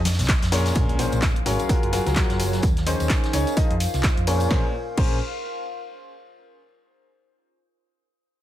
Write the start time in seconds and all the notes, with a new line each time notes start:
Already playing: F2 D#5 D#6
0.05 snare, closed hi-hat, open hi-hat, ride, tambourine, high conga, shaker
0.11 snare, closed hi-hat
0.18 C2, snare, closed hi-hat, tambourine, shaker
0.23 snare, closed hi-hat
0.28 kick, snare, clap, closed hi-hat, ride, tambourine, shaker
0.42 F2, snare, closed hi-hat, shaker
0.52 A#2 C#4 G#4 A#4 C#5, snare, closed hi-hat, open hi-hat, ride, tambourine, shaker
0.65 snare, closed hi-hat, tambourine, shaker
0.75 A#1 A#4, kick, closed hi-hat, impact
0.84 F5
0.89 closed hi-hat
0.99 A#2 C#4 G#4 A#4 C5, closed hi-hat, open hi-hat, tambourine
1.12 A#1, closed hi-hat, tambourine
1.19 C6, kick, snare, clap, closed hi-hat
1.23 closed hi-hat, tambourine
1.36 closed hi-hat
1.46 G#1 F#3 C#4 G#4 A#4 C#5, closed hi-hat, open hi-hat, tambourine
1.59 closed hi-hat, tambourine
1.69 F#3 F4 F#4 G#4 A#4, kick, closed hi-hat, tambourine
1.83 F#1, closed hi-hat
1.93 F#3 F4 F#4 G#4 A#4, closed hi-hat, open hi-hat, tambourine
2.00 C#5
2.06 C#2 F#3 F4 F#4 G#4 A#4, snare, closed hi-hat, tambourine
2.12 F#3 F4 F#4 G#4 A#4 G#5, snare, clap
2.16 kick, closed hi-hat, tambourine
2.29 F#1, snare, closed hi-hat
2.39 closed hi-hat, open hi-hat, tambourine
2.53 snare, closed hi-hat, tambourine
2.62 D#2 D#4, kick, closed hi-hat, tambourine
2.77 snare, closed hi-hat
2.83 D#3 C#4 D#4 G#4 A#4 C5, closed hi-hat, open hi-hat, tambourine
2.92 F5
3.00 D#2, closed hi-hat, tambourine
3.09 kick, snare, clap, closed hi-hat
3.24 snare, closed hi-hat
3.33 C#2 C#4 D#4 G#4 C#5, closed hi-hat, open hi-hat, tambourine
3.47 closed hi-hat, tambourine
3.57 F3 D#4 F4 G#4 D#5, kick, closed hi-hat
3.64 C5
3.70 F2, closed hi-hat
3.80 closed hi-hat, open hi-hat, tambourine
3.93 C2, snare, closed hi-hat, tambourine
4.03 kick, snare, clap, closed hi-hat
4.17 F2, closed hi-hat
4.27 A#2 C#4 G#4 A#4 C#5, open hi-hat, tambourine
4.40 closed hi-hat, tambourine
4.50 A#1 C#4 G#4 A#4 C5, kick, snare
4.59 F5
4.66 C6
4.97 A#1 C#4 G#4 A#4 C5, kick, crash